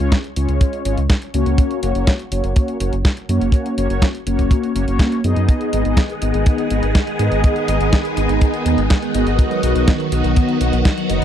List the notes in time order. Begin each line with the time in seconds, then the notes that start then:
0.00 C#2 G#3 C#4 F4 C#5
0.12 kick, snare, closed hi-hat
0.24 closed hi-hat
0.36 C#2 G#3 C#4 F4 C#5, closed hi-hat
0.49 C#2, closed hi-hat
0.61 kick, closed hi-hat
0.73 closed hi-hat
0.85 G#1 G#3 C#4 F4 C#5, closed hi-hat
0.98 C#2, closed hi-hat
1.10 kick, snare, closed hi-hat
1.22 closed hi-hat
1.34 C#2 A#3 C#4 F#4 C#5, closed hi-hat
1.46 C#2, closed hi-hat
1.58 kick, closed hi-hat
1.71 closed hi-hat
1.83 F#1 A#3 C#4 F#4 C#5, closed hi-hat
1.95 F#1 A#3 C#4 F#4 C#5, closed hi-hat
2.07 kick, snare, closed hi-hat
2.19 closed hi-hat
2.31 F#1 A#3 C#4 F#4 C#5, closed hi-hat
2.44 F#1, closed hi-hat
2.56 kick, closed hi-hat
2.68 closed hi-hat
2.80 F#1 A#3 C#4 F#4 C#5, closed hi-hat
2.92 F#1, closed hi-hat
3.05 kick, snare, closed hi-hat
3.17 closed hi-hat
3.29 F#2 A#3 C#4 F#4 C#5, closed hi-hat
3.41 F#1, closed hi-hat
3.52 kick, closed hi-hat
3.66 closed hi-hat
3.78 F#1 A#3 C#4 F#4 C#5, closed hi-hat
3.90 F#1 A#3 C#4 F#4 C#5, closed hi-hat
4.02 kick, snare, closed hi-hat
4.15 closed hi-hat
4.27 F#1 A#3 C#4 F#4 C#5, closed hi-hat
4.39 F#1, kick, closed hi-hat
4.51 kick, closed hi-hat
4.64 closed hi-hat
4.75 F#1 A#3 C#4 F#4 C#5, closed hi-hat
4.87 F#1 A#3 C#4 F#4 C#5, closed hi-hat
4.99 kick, snare, closed hi-hat
5.12 closed hi-hat
5.24 F#2 B3 D#4 G#4 D#5, closed hi-hat
5.36 F#2, closed hi-hat
5.49 D#3 G#3 B3 G#4, kick, closed hi-hat
5.61 closed hi-hat
5.73 G#1 B3 D#4 G#4 D#5, closed hi-hat
5.85 G#1 B3 D#4 G#4 D#5, closed hi-hat
5.97 kick, snare, closed hi-hat
6.10 closed hi-hat
6.22 G#1 B3 D#4 G#4 D#5, closed hi-hat
6.34 G#1, closed hi-hat
6.46 kick, closed hi-hat
6.58 closed hi-hat
6.70 G#1 B3 D#4 G#4 D#5, closed hi-hat
6.83 G#1, closed hi-hat
6.95 kick, snare, closed hi-hat
7.07 closed hi-hat
7.19 G#2 B3 D#4 G#4 D#5, closed hi-hat
7.32 G#1, closed hi-hat
7.44 kick, closed hi-hat
7.56 closed hi-hat
7.68 G#1 B3 D#4 G#4 D#5, closed hi-hat
7.80 G#1 B3 D#4 G#4 D#5, closed hi-hat
7.93 kick, snare, closed hi-hat
8.05 closed hi-hat
8.17 G#1 B3 D#4 G#4 D#5, closed hi-hat
8.29 G#1, closed hi-hat
8.41 kick, closed hi-hat
8.54 closed hi-hat
8.66 D#2 B3 D#4 G#4 D#5, closed hi-hat
8.78 G#1, closed hi-hat
8.90 kick, snare, closed hi-hat
9.02 closed hi-hat
9.14 G#1 B3 D#4 F#4 D#5, closed hi-hat
9.27 G#1, closed hi-hat
9.39 F#3 F#4, kick, closed hi-hat
9.51 closed hi-hat
9.63 B1 B3 D#4 F#4 D#5, closed hi-hat
9.75 B1 B3 D#4 F#4 D#5, closed hi-hat
9.88 kick, snare, closed hi-hat
10.00 closed hi-hat
10.12 B1 B3 D#4 F#4 D#5, closed hi-hat
10.24 B1, closed hi-hat
10.36 kick, closed hi-hat
10.49 closed hi-hat
10.61 B1 B3 D#4 F#4 D#5, closed hi-hat
10.73 B1, closed hi-hat
10.85 kick, snare, closed hi-hat
10.98 closed hi-hat
11.09 F#1 B3 D#4 F#4 D#5, closed hi-hat